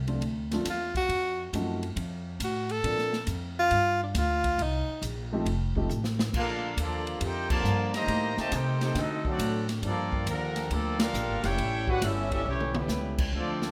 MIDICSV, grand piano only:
0, 0, Header, 1, 2, 480
1, 0, Start_track
1, 0, Key_signature, -2, "major"
1, 0, Tempo, 436999
1, 1199, Time_signature, 4, 2, 24, 8
1, 15059, End_track
2, 0, Start_track
2, 0, Title_t, "Grand piano"
2, 0, Program_c, 0, 0
2, 82, Note_on_c, 0, 53, 61
2, 85, Note_on_c, 0, 57, 52
2, 89, Note_on_c, 0, 60, 61
2, 94, Note_on_c, 0, 62, 60
2, 95, Note_on_c, 0, 65, 67
2, 223, Note_off_c, 0, 53, 0
2, 224, Note_off_c, 0, 57, 0
2, 226, Note_off_c, 0, 60, 0
2, 229, Note_off_c, 0, 62, 0
2, 229, Note_off_c, 0, 65, 0
2, 574, Note_on_c, 0, 53, 67
2, 577, Note_on_c, 0, 57, 64
2, 581, Note_on_c, 0, 60, 58
2, 584, Note_on_c, 0, 62, 58
2, 589, Note_on_c, 0, 65, 75
2, 709, Note_off_c, 0, 53, 0
2, 711, Note_off_c, 0, 57, 0
2, 713, Note_off_c, 0, 60, 0
2, 714, Note_off_c, 0, 62, 0
2, 717, Note_off_c, 0, 65, 0
2, 1686, Note_on_c, 0, 53, 62
2, 1689, Note_on_c, 0, 57, 61
2, 1701, Note_on_c, 0, 60, 56
2, 1703, Note_on_c, 0, 63, 61
2, 1704, Note_on_c, 0, 66, 72
2, 1974, Note_off_c, 0, 53, 0
2, 1975, Note_off_c, 0, 57, 0
2, 1981, Note_off_c, 0, 60, 0
2, 1982, Note_off_c, 0, 63, 0
2, 1983, Note_off_c, 0, 66, 0
2, 3111, Note_on_c, 0, 53, 52
2, 3118, Note_on_c, 0, 58, 56
2, 3120, Note_on_c, 0, 60, 52
2, 3122, Note_on_c, 0, 69, 63
2, 3125, Note_on_c, 0, 62, 57
2, 3407, Note_off_c, 0, 53, 0
2, 3410, Note_off_c, 0, 58, 0
2, 3411, Note_off_c, 0, 60, 0
2, 3412, Note_off_c, 0, 69, 0
2, 3414, Note_off_c, 0, 62, 0
2, 5849, Note_on_c, 0, 57, 72
2, 5851, Note_on_c, 0, 53, 79
2, 5855, Note_on_c, 0, 60, 75
2, 5857, Note_on_c, 0, 63, 74
2, 5865, Note_on_c, 0, 67, 76
2, 5987, Note_off_c, 0, 57, 0
2, 5989, Note_off_c, 0, 53, 0
2, 5991, Note_off_c, 0, 60, 0
2, 5992, Note_off_c, 0, 63, 0
2, 5996, Note_off_c, 0, 67, 0
2, 6327, Note_on_c, 0, 53, 71
2, 6331, Note_on_c, 0, 57, 71
2, 6335, Note_on_c, 0, 60, 59
2, 6341, Note_on_c, 0, 63, 56
2, 6345, Note_on_c, 0, 67, 80
2, 6467, Note_off_c, 0, 53, 0
2, 6468, Note_off_c, 0, 57, 0
2, 6471, Note_off_c, 0, 60, 0
2, 6474, Note_off_c, 0, 63, 0
2, 6476, Note_off_c, 0, 67, 0
2, 15059, End_track
0, 0, End_of_file